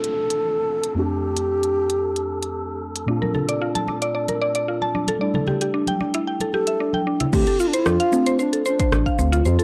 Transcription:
Already playing: synth keys A3 C4 D4 F4, bansuri A4, synth texture A4, downlifter
0.04 closed hi-hat
0.30 closed hi-hat
0.83 closed hi-hat
0.94 synth keys F2 A3 C4 D4, bansuri G4
0.98 synth keys G4
1.37 closed hi-hat
1.63 closed hi-hat
1.90 closed hi-hat
2.16 closed hi-hat
2.43 closed hi-hat
2.96 closed hi-hat
3.06 synth keys A#2 A3 C4 D4 F4, synth pluck D4
3.22 synth pluck A#4, high conga
3.34 synth pluck A4, muted conga, low conga
3.49 synth pluck D5, closed hi-hat
3.62 synth pluck F4
3.75 synth pluck A5, closed hi-hat, high conga
3.88 synth pluck D4, muted conga
4.02 synth pluck D5, closed hi-hat
4.15 synth pluck D5
4.28 synth pluck A#4, closed hi-hat, muted conga
4.42 synth pluck D5
4.55 synth pluck D5, closed hi-hat
4.68 synth pluck F4
4.82 synth pluck A5, muted conga
4.95 synth pluck D4, high conga
5.07 synth pluck A4, closed hi-hat, muted conga, high conga
5.19 synth keys G3 A3 D4, synth pluck D5
5.23 synth keys E4
5.34 synth pluck A4, high conga, low conga
5.47 synth pluck G4, muted conga, low conga
5.61 synth pluck G4, closed hi-hat
5.74 synth pluck D4
5.87 synth pluck G5, closed hi-hat, high conga
6.01 synth pluck D4, muted conga
6.14 synth pluck E4, closed hi-hat
6.27 synth pluck G5
6.40 synth pluck A4, closed hi-hat, muted conga
6.53 synth pluck G4, bansuri A4, high conga
6.67 synth pluck E5, closed hi-hat
6.80 synth pluck D4
6.93 synth pluck G5, high conga
7.07 synth pluck D4
7.20 synth pluck E4, closed hi-hat, low conga
7.33 analog synth bass D2, synth pluck C4, bansuri G4, kick, crash, cabasa
7.47 synth pluck A4, closed hi-hat, cabasa
7.59 bansuri F4, synth pluck F4, cabasa
7.68 bansuri D4
7.73 bansuri E4, synth pluck C5, closed hi-hat, cabasa
7.86 analog synth bass F2, synth pluck D4, bansuri F4, cross-stick, cabasa
8.00 synth pluck F5, closed hi-hat, cabasa
8.12 synth keys A3 C4 D4 F4, synth pluck C4, cabasa
8.26 synth pluck C5, closed hi-hat, cabasa
8.39 bansuri D4, synth pluck C5, cabasa
8.53 synth pluck A4, closed hi-hat, cabasa
8.66 bansuri D4, synth pluck C5, cabasa
8.80 synth pluck C5, kick, closed hi-hat, cabasa
8.92 analog synth bass A1, synth pluck D4, cross-stick, cabasa
9.06 synth pluck F5, kick, cabasa
9.19 analog synth bass D2, synth pluck C4, cabasa
9.32 synth pluck F4, closed hi-hat, cabasa
9.45 analog synth bass F2, bansuri F4 G4, synth pluck C5, cabasa
9.59 synth pluck A4, closed hi-hat, cabasa

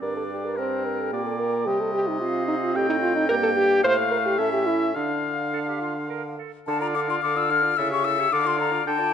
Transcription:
0.01 bassoon G2, clarinet D4, french horn A#4, oboe D5, flute D5
0.17 french horn A4
0.31 french horn G4
0.45 french horn A#4
0.57 clarinet C4, oboe A#4, french horn C5, flute G5
0.86 french horn A#4
1.00 french horn A4
1.12 bassoon A#2, clarinet A#3, french horn G4, oboe D5
1.25 french horn A4
1.39 french horn A#4
1.66 bassoon C3, clarinet G3, french horn G4, oboe D#5
1.80 french horn A4
1.94 french horn G4
2.08 french horn D#4
2.21 clarinet C4, french horn F4, flute F5
2.48 french horn D#4
2.63 french horn F4
2.75 bassoon A2, french horn G4, flute D#5, oboe G5
2.89 french horn D#4
3.02 french horn F4
3.16 french horn D#4
3.29 bassoon G2, clarinet A#3, french horn A#4, oboe G5, flute G5
3.43 french horn A4
3.56 french horn G4
3.83 bassoon A2, clarinet A3, french horn C5, flute F5, oboe F5
4.11 french horn A#4
4.26 french horn G4
4.38 bassoon A2, clarinet C#4, french horn A4, oboe E5, flute E5
4.53 french horn G4
4.67 french horn E4
4.94 bassoon D3, french horn D4, clarinet D4, oboe F5, flute F5
5.53 clarinet A4
5.67 clarinet G4
5.81 clarinet F4
6.09 clarinet A#4
6.38 clarinet A4
6.67 bassoon D3, french horn D4, clarinet A4, oboe F5, flute A5
6.81 french horn F4, clarinet D5, flute A#5
6.95 french horn D4, clarinet A4, flute D6
7.09 french horn F4, clarinet D5, flute C6
7.22 bassoon D3, french horn D4, clarinet A4, flute D6
7.36 french horn F4, clarinet D5, flute E6
7.50 french horn D4, clarinet A4, flute F6
7.63 french horn F4, clarinet D5
7.77 bassoon C#3, french horn E4, clarinet A4, oboe E5, flute E6
7.91 french horn G4, clarinet C#5, flute C#6
8.04 french horn E4, clarinet A4, flute E6
8.19 french horn G4, clarinet C#5
8.31 bassoon D3, french horn D4, clarinet A4, oboe F5, flute D6
8.46 french horn F4, clarinet D5, flute C6
8.59 french horn D4, clarinet A4, flute A#5
8.72 french horn F4, clarinet D5
8.85 bassoon D3, french horn D4, clarinet A4, oboe G5, flute A5
8.99 french horn F4, clarinet D5

